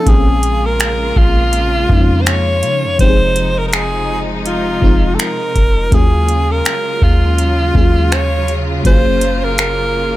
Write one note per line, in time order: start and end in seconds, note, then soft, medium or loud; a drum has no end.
0.05 1.12 A#1 loud
0.05 2.96 C#3 medium
0.05 1.09 F3 medium
0.05 2.96 G#3 medium
0.05 1.09 A#3 medium
0.05 2.96 A#3 medium
0.05 1.10 C4 medium
0.05 1.10 C#4 medium
0.05 2.96 F4 medium
0.05 0.67 G#4 loud
0.05 1.11 G#4 medium
0.05 kick loud
0.05 closed hi-hat medium
0.43 closed hi-hat medium
0.66 1.19 A#4 loud
0.80 finger snap loud
0.80 closed hi-hat medium
1.16 1.87 A#1 loud
1.16 2.23 F4 loud
1.16 kick medium
1.53 closed hi-hat medium
1.88 2.64 F2 loud
1.88 2.66 F3 medium
1.88 2.67 G#3 medium
1.88 2.66 A#3 medium
1.88 2.67 C#4 medium
1.88 kick loud
1.92 2.68 D#4 medium
2.21 2.29 C5 medium
2.26 3.00 C#5 loud
2.26 finger snap loud
2.26 closed hi-hat medium
2.63 2.86 C#3 loud
2.63 closed hi-hat medium
2.84 2.99 F2 loud
2.98 4.78 F1 loud
2.98 5.89 C3 medium
2.98 4.02 F3 medium
2.98 5.89 F3 medium
2.98 4.02 G#3 medium
2.98 5.89 G#3 medium
2.98 4.03 C4 medium
2.98 5.89 D#4 medium
2.98 4.03 D#4 medium
2.98 3.60 C5 loud
2.98 kick loud
2.98 closed hi-hat medium
3.02 3.08 G4 medium
3.09 4.07 G#4 medium
3.36 closed hi-hat medium
3.58 3.67 A#4 loud
3.68 3.75 A#4 medium
3.73 4.21 G#4 loud
3.73 finger snap loud
3.73 closed hi-hat medium
4.46 5.16 F4 loud
4.46 closed hi-hat medium
4.81 5.17 F1 loud
4.81 5.58 F3 medium
4.81 5.59 G#3 medium
4.81 5.59 C4 medium
4.81 5.60 D#4 medium
4.81 5.60 F4 medium
4.81 kick medium
5.14 5.22 A4 medium
5.19 5.95 A#4 loud
5.19 finger snap loud
5.19 closed hi-hat medium
5.56 5.91 F1 loud
5.56 kick medium
5.56 closed hi-hat medium
5.91 6.62 D#2 loud
5.91 10.17 C#3 medium
5.91 6.94 F#3 medium
5.91 10.17 F#3 medium
5.91 8.82 G#3 medium
5.91 6.95 A#3 medium
5.91 6.95 C#4 medium
5.91 10.17 F4 medium
5.91 6.96 F4 medium
5.91 6.53 G#4 loud
5.91 6.96 G#4 medium
5.91 kick loud
5.91 closed hi-hat medium
6.29 closed hi-hat medium
6.51 7.05 A#4 loud
6.65 finger snap loud
6.65 closed hi-hat medium
7.02 7.72 D#2 loud
7.02 8.15 F4 loud
7.02 kick medium
7.38 closed hi-hat medium
7.74 8.81 D#2 loud
7.74 8.51 F#3 medium
7.74 8.51 A#3 medium
7.74 8.52 C#4 medium
7.74 8.52 F4 medium
7.74 kick loud
7.78 8.53 G#4 medium
8.12 8.60 C#5 loud
8.12 finger snap loud
8.12 closed hi-hat medium
8.48 closed hi-hat medium
8.83 10.17 F#1 loud
8.83 9.87 F#3 medium
8.83 10.17 A#3 medium
8.83 9.87 A#3 medium
8.83 9.88 C#4 medium
8.83 9.88 F4 medium
8.83 9.46 C5 loud
8.83 kick loud
8.83 closed hi-hat medium
8.87 9.89 G#4 medium
9.21 closed hi-hat medium
9.44 9.59 A#4 medium
9.58 10.17 A#4 loud
9.58 finger snap loud
9.58 closed hi-hat medium